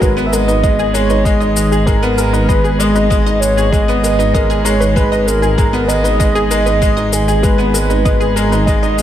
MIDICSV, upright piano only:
0, 0, Header, 1, 2, 480
1, 0, Start_track
1, 0, Tempo, 618557
1, 12, Time_signature, 4, 2, 24, 8
1, 7000, End_track
2, 0, Start_track
2, 0, Title_t, "Upright piano"
2, 0, Program_c, 0, 0
2, 0, Control_c, 0, 64, 127
2, 10, Note_on_c, 0, 56, 79
2, 21, Control_c, 0, 64, 0
2, 124, Note_off_c, 0, 56, 0
2, 129, Note_on_c, 0, 59, 102
2, 157, Control_c, 0, 64, 127
2, 244, Note_off_c, 0, 59, 0
2, 250, Note_on_c, 0, 56, 73
2, 319, Note_off_c, 0, 56, 0
2, 370, Note_on_c, 0, 63, 73
2, 484, Note_off_c, 0, 63, 0
2, 491, Note_on_c, 0, 56, 85
2, 605, Note_off_c, 0, 56, 0
2, 612, Note_on_c, 0, 68, 77
2, 726, Note_off_c, 0, 68, 0
2, 731, Note_on_c, 0, 56, 100
2, 800, Note_off_c, 0, 56, 0
2, 851, Note_on_c, 0, 63, 74
2, 965, Note_off_c, 0, 63, 0
2, 978, Note_on_c, 0, 56, 99
2, 1089, Note_off_c, 0, 56, 0
2, 1099, Note_on_c, 0, 63, 74
2, 1209, Note_off_c, 0, 63, 0
2, 1214, Note_on_c, 0, 56, 80
2, 1327, Note_off_c, 0, 56, 0
2, 1337, Note_on_c, 0, 68, 75
2, 1403, Note_off_c, 0, 68, 0
2, 1452, Note_on_c, 0, 56, 87
2, 1566, Note_off_c, 0, 56, 0
2, 1572, Note_on_c, 0, 59, 106
2, 1686, Note_off_c, 0, 59, 0
2, 1689, Note_on_c, 0, 56, 72
2, 1759, Note_off_c, 0, 56, 0
2, 1805, Note_on_c, 0, 63, 67
2, 1922, Note_off_c, 0, 63, 0
2, 1926, Note_on_c, 0, 56, 78
2, 2043, Note_off_c, 0, 56, 0
2, 2048, Note_on_c, 0, 68, 75
2, 2164, Note_off_c, 0, 68, 0
2, 2170, Note_on_c, 0, 56, 102
2, 2239, Note_off_c, 0, 56, 0
2, 2289, Note_on_c, 0, 63, 73
2, 2404, Note_off_c, 0, 63, 0
2, 2407, Note_on_c, 0, 56, 104
2, 2523, Note_off_c, 0, 56, 0
2, 2533, Note_on_c, 0, 63, 75
2, 2646, Note_off_c, 0, 63, 0
2, 2653, Note_on_c, 0, 56, 75
2, 2766, Note_off_c, 0, 56, 0
2, 2773, Note_on_c, 0, 68, 76
2, 2841, Note_off_c, 0, 68, 0
2, 2896, Note_on_c, 0, 56, 85
2, 3008, Note_off_c, 0, 56, 0
2, 3012, Note_on_c, 0, 59, 106
2, 3126, Note_off_c, 0, 59, 0
2, 3129, Note_on_c, 0, 56, 81
2, 3198, Note_off_c, 0, 56, 0
2, 3249, Note_on_c, 0, 63, 80
2, 3364, Note_off_c, 0, 63, 0
2, 3367, Note_on_c, 0, 56, 88
2, 3483, Note_off_c, 0, 56, 0
2, 3492, Note_on_c, 0, 68, 80
2, 3606, Note_off_c, 0, 68, 0
2, 3606, Note_on_c, 0, 56, 102
2, 3677, Note_off_c, 0, 56, 0
2, 3726, Note_on_c, 0, 63, 67
2, 3843, Note_off_c, 0, 63, 0
2, 3848, Note_on_c, 0, 56, 105
2, 3964, Note_off_c, 0, 56, 0
2, 3972, Note_on_c, 0, 63, 76
2, 4086, Note_off_c, 0, 63, 0
2, 4094, Note_on_c, 0, 56, 72
2, 4207, Note_off_c, 0, 56, 0
2, 4213, Note_on_c, 0, 68, 67
2, 4280, Note_off_c, 0, 68, 0
2, 4330, Note_on_c, 0, 56, 84
2, 4445, Note_off_c, 0, 56, 0
2, 4447, Note_on_c, 0, 59, 102
2, 4563, Note_off_c, 0, 59, 0
2, 4571, Note_on_c, 0, 56, 81
2, 4640, Note_off_c, 0, 56, 0
2, 4688, Note_on_c, 0, 63, 74
2, 4804, Note_off_c, 0, 63, 0
2, 4807, Note_on_c, 0, 56, 82
2, 4923, Note_off_c, 0, 56, 0
2, 4929, Note_on_c, 0, 68, 78
2, 5044, Note_off_c, 0, 68, 0
2, 5049, Note_on_c, 0, 56, 104
2, 5119, Note_off_c, 0, 56, 0
2, 5169, Note_on_c, 0, 63, 79
2, 5284, Note_off_c, 0, 63, 0
2, 5290, Note_on_c, 0, 56, 110
2, 5404, Note_off_c, 0, 56, 0
2, 5408, Note_on_c, 0, 63, 83
2, 5524, Note_off_c, 0, 63, 0
2, 5530, Note_on_c, 0, 56, 78
2, 5645, Note_off_c, 0, 56, 0
2, 5649, Note_on_c, 0, 68, 70
2, 5719, Note_off_c, 0, 68, 0
2, 5765, Note_on_c, 0, 56, 85
2, 5882, Note_off_c, 0, 56, 0
2, 5883, Note_on_c, 0, 59, 100
2, 6001, Note_off_c, 0, 59, 0
2, 6007, Note_on_c, 0, 56, 71
2, 6077, Note_off_c, 0, 56, 0
2, 6128, Note_on_c, 0, 63, 68
2, 6243, Note_off_c, 0, 63, 0
2, 6248, Note_on_c, 0, 56, 80
2, 6363, Note_off_c, 0, 56, 0
2, 6364, Note_on_c, 0, 68, 79
2, 6482, Note_off_c, 0, 68, 0
2, 6488, Note_on_c, 0, 56, 103
2, 6558, Note_off_c, 0, 56, 0
2, 6615, Note_on_c, 0, 63, 75
2, 6727, Note_off_c, 0, 63, 0
2, 6733, Note_on_c, 0, 56, 100
2, 6846, Note_off_c, 0, 56, 0
2, 6853, Note_on_c, 0, 63, 74
2, 6966, Note_off_c, 0, 63, 0
2, 6968, Note_on_c, 0, 56, 77
2, 7000, Note_off_c, 0, 56, 0
2, 7000, End_track
0, 0, End_of_file